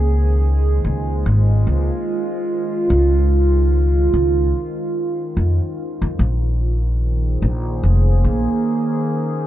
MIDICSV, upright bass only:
0, 0, Header, 1, 2, 480
1, 0, Start_track
1, 0, Key_signature, -5, "minor"
1, 0, Tempo, 821918
1, 1697, Time_signature, 4, 2, 24, 8
1, 5530, End_track
2, 0, Start_track
2, 0, Title_t, "Upright bass"
2, 0, Program_c, 0, 32
2, 0, Note_on_c, 0, 37, 98
2, 475, Note_off_c, 0, 37, 0
2, 494, Note_on_c, 0, 37, 87
2, 711, Note_off_c, 0, 37, 0
2, 736, Note_on_c, 0, 32, 92
2, 952, Note_off_c, 0, 32, 0
2, 974, Note_on_c, 0, 37, 86
2, 1098, Note_off_c, 0, 37, 0
2, 1694, Note_on_c, 0, 37, 93
2, 2396, Note_off_c, 0, 37, 0
2, 2415, Note_on_c, 0, 37, 90
2, 2632, Note_off_c, 0, 37, 0
2, 3134, Note_on_c, 0, 41, 90
2, 3258, Note_off_c, 0, 41, 0
2, 3513, Note_on_c, 0, 41, 91
2, 3603, Note_off_c, 0, 41, 0
2, 3616, Note_on_c, 0, 34, 95
2, 4317, Note_off_c, 0, 34, 0
2, 4335, Note_on_c, 0, 34, 85
2, 4551, Note_off_c, 0, 34, 0
2, 4575, Note_on_c, 0, 29, 93
2, 4792, Note_off_c, 0, 29, 0
2, 4815, Note_on_c, 0, 34, 90
2, 4938, Note_off_c, 0, 34, 0
2, 5530, End_track
0, 0, End_of_file